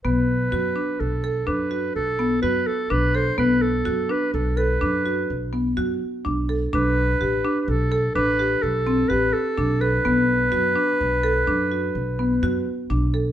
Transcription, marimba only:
X:1
M:7/4
L:1/8
Q:1/4=126
K:Bm
V:1 name="Marimba"
B,2 F D2 A D F2 B, F2 D A | B,2 F D2 A D F2 B, F2 D A | D2 G D2 A D G2 =C G2 D A | B,2 F D2 A D F2 B, F2 D A |]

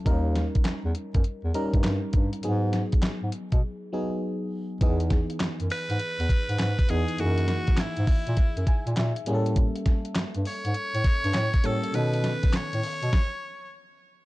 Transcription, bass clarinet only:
X:1
M:4/4
L:1/16
Q:"Swing 16ths" 1/4=101
K:E
V:1 name="Bass clarinet" clef=bass
D,,3 z E,, E,, z F,, z E,, z =G,, G,, z G,, z | G,,3 z G,, G,, z B,, z8 | E,,3 z F,, F,, z G,, z E,, z G,, G,, z E,, z | F,,3 z G,, G,, z ^A,, z F,, z A,, A,, z =A,,2- |
A,, z3 =G,, G,, z ^G,, z A,, z =G,, A,, z A,, z | B,,3 z A,, A,, z B,, z8 |]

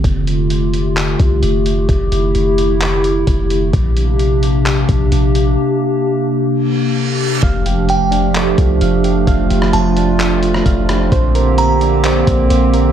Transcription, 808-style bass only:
X:1
M:4/4
L:1/8
Q:1/4=130
K:F
V:1 name="808-style bass" clef=bass
F,,,4- F,,, C,, F,,,2 | F,,, F,,, F,,,4 F,,,2 | B,,,4- B,,, B,,, B,,,2 | z8 |
F,,,4- F,,, C,, F,,,2 | F,,, F,,, F,,,4 F,,,2 | B,,,4- B,,, B,,, B,,,2 |]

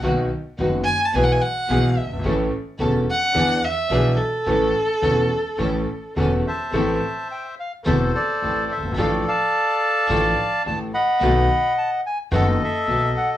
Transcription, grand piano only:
X:1
M:4/4
L:1/16
Q:1/4=108
K:A
V:1 name="Grand piano" clef=bass
[B,,,B,,^D,F,B,F]2 z2 [F,,,F,,D,F,B,F]2 z2 [B,,,B,,E,G,B,G]2 z2 [B,,,B,,E,G,B,G]2 z =G,,,/2 ^G,,,/2 | [A,,,A,,E,A,CA]2 z2 [E,,,E,,E,A,CA]2 z2 [E,,E,B,DG]2 z2 [B,,,B,,E,B,DG]2 z2 | [A,,,A,,E,A,CA]2 z2 [E,,,E,,E,A,CA]2 z2 [A,,,A,,E,A,CA]2 z2 [E,,,E,,E,A,CA]2 z2 | [K:Am] [A,,,A,,E,A,CA]2 z6 [E,,,E,,E,A,CA]2 z2 [A,,,A,,]2 z/2 ^F,,,/2 G,,,/2 ^G,,,/2 |
[A,,,A,,F,A,DA]2 z6 [A,,,A,,F,A,DA]2 z2 [A,,,A,,]2 z2 | [B,,,B,,^D,A,B,^F]2 z6 [^F,,,^F,,D,A,B,F]2 z2 [B,,,B,,]2 z2 |]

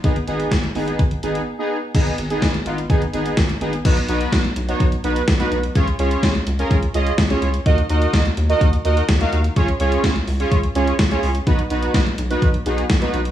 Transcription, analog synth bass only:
X:1
M:4/4
L:1/8
Q:1/4=126
K:G#dor
V:1 name="Analog synth bass" clef=bass
G,,, G,,, G,,, G,,, G,,, G,,, z2 | G,,, G,,, G,,, G,,, G,,, G,,, G,,, G,,, | B,,, B,,, B,,, B,,, B,,, B,,, B,,, B,,, | C,, C,, C,, C,, C,, C,, C,, C,, |
D,, D,, D,, D,, D,, D,, D,, D,, | C,, C,, C,, C,, C,, C,, C,, C,, | B,,, B,,, B,,, B,,, B,,, B,,, B,,, B,,, |]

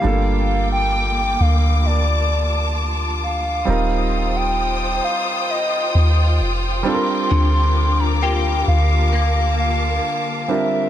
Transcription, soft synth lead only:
X:1
M:4/4
L:1/16
Q:1/4=66
K:Gm
V:1 name="Soft synth lead"
f3 g3 f2 d4 z2 f2- | f3 g3 f2 e4 z2 c'2- | c'3 b g2 f4 f4 =e2 |]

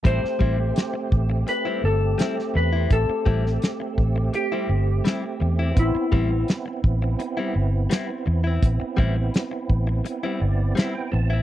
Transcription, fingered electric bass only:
X:1
M:4/4
L:1/16
Q:1/4=84
K:Am
V:1 name="Fingered electric bass" clef=bass
A,,, z A,,,2 z2 A,,,2 z2 G,,,2 z2 E,,2 | A,,, z A,,,2 z2 A,,,2 z2 G,,,2 z2 E,,2 | A,,, z A,,,2 z2 A,,,2 z2 G,,,2 z2 E,,2 | A,,, z A,,,2 z2 A,,,2 z2 G,,,2 z2 A,,,2 |]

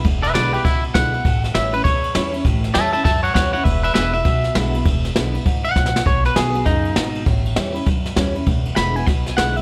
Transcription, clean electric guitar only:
X:1
M:4/4
L:1/8
Q:"Swing" 1/4=199
K:Emix
V:1 name="Clean electric guitar"
z [Be] [Bd] [=GB] E z f2- | f2 e B c4 | z2 [ea] [ea] [ea] [cf] [cf] [cf] | [Be] [Be] [Be] e4- e- |
e z4 f3 | c B G2 ^D4 | z8 | z2 b g b g f e |]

